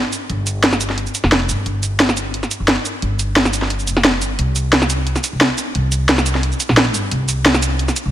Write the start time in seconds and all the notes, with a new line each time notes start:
0.13 open hi-hat, shaker
0.30 G1, closed hi-hat
0.47 closed hi-hat, shaker
0.64 snare, closed hi-hat
0.73 snare, shaker
0.81 closed hi-hat, shaker
0.90 snare
0.98 closed hi-hat
1.07 shaker
1.15 closed hi-hat, shaker
1.24 F1, snare
1.32 snare, closed hi-hat
1.49 G2, open hi-hat, shaker
1.66 G1, closed hi-hat
1.83 closed hi-hat, shaker
2.00 snare, closed hi-hat
2.09 snare, shaker
2.17 closed hi-hat, shaker
2.34 closed hi-hat
2.43 snare, shaker
2.51 closed hi-hat, shaker
2.60 G1
2.68 snare, closed hi-hat
2.85 open hi-hat, shaker
3.02 G1, closed hi-hat
3.19 closed hi-hat, shaker
3.36 snare, closed hi-hat
3.45 snare, shaker
3.53 closed hi-hat, shaker
3.62 snare
3.70 closed hi-hat
3.79 shaker
3.87 F1, closed hi-hat, shaker
3.97 snare
4.04 snare, closed hi-hat
4.22 G1, open hi-hat, shaker
4.39 C2, closed hi-hat
4.56 closed hi-hat, shaker
4.73 snare, closed hi-hat
4.82 snare, shaker
4.90 closed hi-hat, shaker
5.07 closed hi-hat
5.16 snare, shaker
5.24 closed hi-hat, shaker
5.33 C2
5.41 snare, closed hi-hat
5.58 open hi-hat, shaker
5.75 C2, closed hi-hat
5.92 closed hi-hat, shaker
6.09 snare, closed hi-hat
6.18 snare, shaker
6.26 closed hi-hat, shaker
6.35 snare
6.43 closed hi-hat
6.52 shaker
6.60 closed hi-hat, shaker
6.69 A#1, snare
6.77 snare, closed hi-hat
6.94 G1, open hi-hat, shaker
7.11 C2, closed hi-hat
7.29 closed hi-hat, shaker
7.46 snare, closed hi-hat
7.54 snare, shaker
7.62 closed hi-hat, shaker
7.79 closed hi-hat
7.88 snare, shaker
7.96 closed hi-hat, shaker
8.06 C2